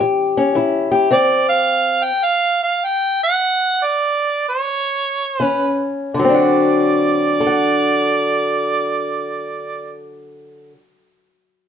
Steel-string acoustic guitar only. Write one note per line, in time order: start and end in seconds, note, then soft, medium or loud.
0.00 0.52 A2 medium
0.00 1.12 E3 medium
0.00 0.36 C#4 medium
0.00 0.90 G4 medium
0.37 1.10 C#4 medium
0.55 1.08 A2 medium
0.55 1.09 E4 medium
0.92 1.09 G4 medium
1.11 1.59 D3 medium
1.11 2.10 C4 medium
5.40 6.09 D#3 medium
5.40 6.11 C#4 medium
6.14 10.72 D3 medium
6.19 10.75 F#3 medium
6.24 7.40 C4 medium
6.29 10.80 D4 medium
6.34 7.46 F#4 medium
7.40 10.72 A4 medium
7.47 10.75 F#5 medium